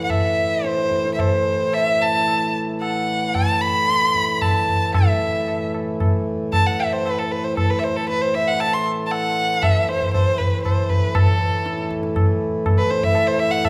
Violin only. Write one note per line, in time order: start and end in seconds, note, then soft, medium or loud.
0.04 0.11 F#5 medium
0.10 0.67 E5 medium
0.65 1.13 C5 medium
1.14 1.22 E5 medium
1.20 1.75 C5 medium
1.74 2.03 E5 medium
2.02 2.55 A5 medium
2.82 3.36 F#5 medium
3.35 3.62 A5 medium
3.61 4.43 B5 loud
4.41 4.94 A5 medium
4.95 5.70 E5 medium
6.53 6.68 A5 medium
6.67 6.81 F#5 medium
6.80 6.94 E5 medium
6.93 7.08 C5 medium
7.06 7.20 B4 medium
7.19 7.33 A4 medium
7.32 7.46 B4 medium
7.45 7.57 C5 medium
7.58 7.72 A4 medium
7.70 7.81 B4 medium
7.79 7.85 E5 medium
7.83 7.98 C5 medium
7.97 8.09 A4 medium
8.09 8.23 B4 medium
8.22 8.36 C5 medium
8.34 8.49 E5 medium
8.48 8.62 F#5 medium
8.60 8.75 A5 loud
8.73 8.86 C6 medium
9.06 9.13 A5 medium
9.11 9.64 F#5 medium
9.62 9.82 E5 medium
9.82 9.90 E5 medium
9.88 10.13 C5 medium
10.14 10.39 C5 medium
10.38 10.63 B4 medium
10.63 10.91 C5 medium
10.89 11.16 B4 medium
11.15 11.91 A4 medium
12.78 12.92 B4 medium
12.90 13.05 C5 medium
13.03 13.29 E5 medium
13.27 13.41 C5 medium
13.39 13.52 E5 loud
13.51 13.66 F#5 medium
13.65 13.69 E5 loud